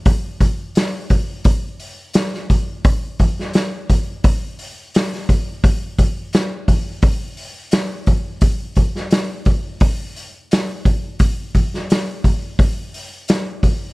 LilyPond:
\new DrumStaff \with { instrumentName = "Drums" } \drummode { \time 4/4 \tempo 4 = 86 <hho bd>8 <hho bd>8 <hho sn>8 <hho bd>8 <hho bd>8 hho8 <hho sn>16 sn16 <hho bd>8 | <hho bd>8 <hho bd>16 sn16 <hho sn>8 <hho bd>8 <hho bd>8 hho8 <hho sn>16 sn16 <hho bd>8 | <hho bd>8 <hho bd>8 <hho sn>8 <hho bd>8 <hho bd>8 hho8 <hho sn>8 <hho bd>8 | <hho bd>8 <hho bd>16 sn16 <hho sn>8 <hho bd>8 <hho bd>8 hho8 <hho sn>8 <hho bd>8 |
<hho bd>8 <hho bd>16 sn16 <hho sn>8 <hho bd>8 <hho bd>8 hho8 <hho sn>8 <hho bd>8 | }